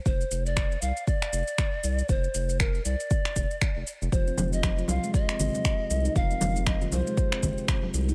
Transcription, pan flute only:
X:1
M:4/4
L:1/16
Q:"Swing 16ths" 1/4=118
K:Fdor
V:1 name="Pan flute"
c3 d3 f2 d8 | c4 B2 d8 z2 | c3 e3 f2 e8 | f4 e2 c8 z2 |]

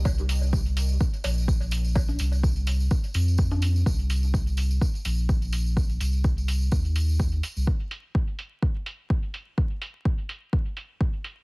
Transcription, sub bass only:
X:1
M:4/4
L:1/16
Q:"Swing 16ths" 1/4=126
K:Cm
V:1 name="Sub bass" clef=bass
C,,8 z2 B,,,6- | B,,,2 C,,6 z2 F,,6 | C,,8 z2 B,,,6- | B,,,2 C,,6 E,,6 z C,, |
z16 | z16 |]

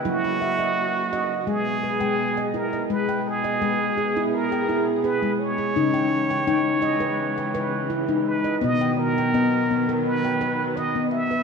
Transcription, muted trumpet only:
X:1
M:4/4
L:1/8
Q:1/4=84
K:G#m
V:1 name="Muted trumpet"
F4 G3 A | B G3 A2 B c- | c6 z B | d A3 B2 d e |]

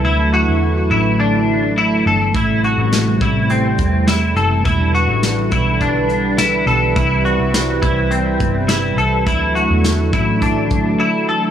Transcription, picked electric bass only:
X:1
M:4/4
L:1/16
Q:1/4=104
K:Dmix
V:1 name="Picked electric bass" clef=bass
D,,3 E,,3 A,,,8 G,,,2 | A,,,3 A,,,3 A,,,4 E,,4 F,,,2 | E,,,3 A,,,3 B,,,8 B,,,2 | C,,3 C,,3 C,,4 G,,,4 C,,2 |
D,,3 E,,3 A,,,6 z4 |]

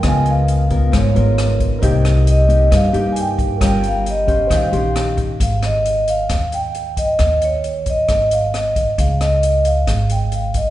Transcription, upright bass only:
X:1
M:4/4
L:1/8
Q:1/4=134
K:Ebmix
V:1 name="Upright bass" clef=bass
D,,4 A,,, A,,,3 | C,,4 G,, G,,3 | G,,,4 E,, B,,,3 | [K:Dblyd] A,,,4 E,,4 |
E,,4 A,,,4 | D,,4 A,,,4 |]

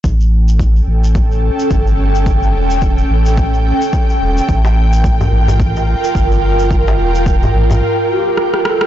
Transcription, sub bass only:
X:1
M:4/4
L:1/8
Q:"Swing 16ths" 1/4=108
K:none
V:1 name="Sub bass" clef=bass
A,,,3 A,,,2 z G,,,2- | G,,, E,,,2 A,,,2 z2 E,,, | A,,,3 A,,,2 z G,,,2- | G,,, E,,,2 A,,, z4 |]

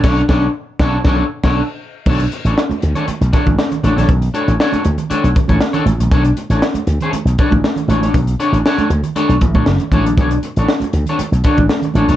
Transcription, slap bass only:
X:1
M:4/4
L:1/16
Q:1/4=118
K:Bm
V:1 name="Slap bass" clef=bass
B,,,2 B,,,2 z2 B,,,2 B,,,2 z B,,,2 z3 | B,,,2 z A,,, z2 D,, z2 B,,, z A,,, z2 A,,, ^A,,, | B,,,2 z A,,, z2 D,, z2 B,,, z A,,, z2 A,,, ^A,,, | B,,,2 z A,,, z2 D,, z2 B,,, z A,,, z2 A,,,2 |
B,,,2 z A,,, z2 D,, z2 B,,, A,,, A,,, F,,, z A,,, ^A,,, | B,,,2 z A,,, z2 D,, z2 B,,, z A,,, z2 A,,, ^A,,, |]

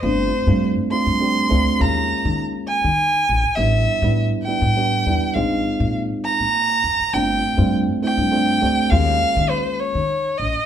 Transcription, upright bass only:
X:1
M:6/8
L:1/16
Q:3/8=67
K:Glyd
V:1 name="Upright bass" clef=bass
G,,,2 z G,,2 z2 G,,3 D,, z | _E,,2 z _E,2 z2 E,3 _B,,, z | A,,,2 z A,,2 z2 A,,3 E,, z | _B,,,2 z _B,,2 z2 B,,3 =F,, z |
G,,,2 z G,,2 z2 G,,3 D,, z | _E,,2 z _E,2 z2 E,3 _B,,, z |]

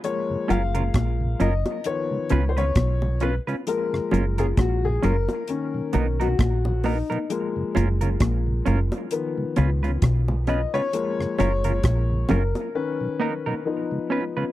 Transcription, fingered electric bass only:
X:1
M:4/4
L:1/16
Q:"Swing 16ths" 1/4=66
K:F#
V:1 name="Fingered electric bass" clef=bass
z2 F,,,2 A,,,2 F,,, z3 C,,2 B,,,3 z | z2 F,,,2 A,,,2 F,,, z3 B,,,2 A,,,3 z | z2 F,,,2 A,,,2 F,,, z3 C,,2 B,,,3 z | z2 F,,,2 A,,,2 F,,, z8 z |]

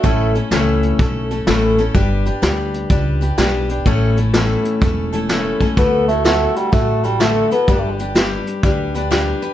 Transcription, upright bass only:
X:1
M:4/4
L:1/8
Q:"Swing" 1/4=126
K:Amix
V:1 name="Upright bass" clef=bass
A,,,2 C,,2 B,,,2 A,,,2 | G,,,2 D,,2 C,,2 B,,,2 | A,,,4 E,,,4 | D,,4 A,,,4 |
G,,,4 D,,4 |]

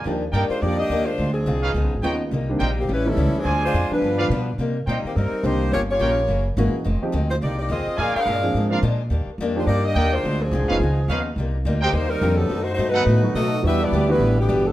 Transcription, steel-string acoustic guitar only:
X:1
M:4/4
L:1/8
Q:"Swing" 1/4=212
K:Cm
V:1 name="Steel-string acoustic guitar" clef=bass
[E,G,B,D] z [E,G,B,D] z [E,G,B,D] z [E,G,B,D] z | [D,A,CF] z [D,A,CF] z [_D,F,_CE] z [D,F,CE] z | [C,G,B,E] z [C,G,B,E] z [=A,,G,^C=E] z [A,,G,CE] z | [D,A,CF] z [D,A,CF] z [G,,F,=B,D] z [G,,F,B,D] z |
[C,G,B,E] z [C,G,B,E] z [C,G,B,E] z [C,G,B,E] z | [G,,F,B,_D] z [G,,F,B,D] z [^F,^A,=E^G] z [F,A,EG] z | [F,,E,A,C] z [F,,E,A,C] z [F,,E,A,C] z [F,,E,A,C] z | [B,,F,A,D] z [B,,F,A,D] z [B,,F,A,D] z [B,,F,A,D] z |
[E,G,B,D] z [E,G,B,D] z [E,G,B,D] z [E,G,B,D] z | [D,A,CF] z [D,A,CF] z [_D,F,_CE] z [D,F,CE] z | [C,G,B,E] z [C,G,B,E] z [C,G,B,E] z [C,G,B,E] z | [=B,,^F,=A,^D] z [B,,F,A,D] z [B,,F,A,D] z [B,,F,A,D] z |
[K:Em] [E,B,DG] z [E,B,DG] z [E,B,DG] z [E,B,DG] z |]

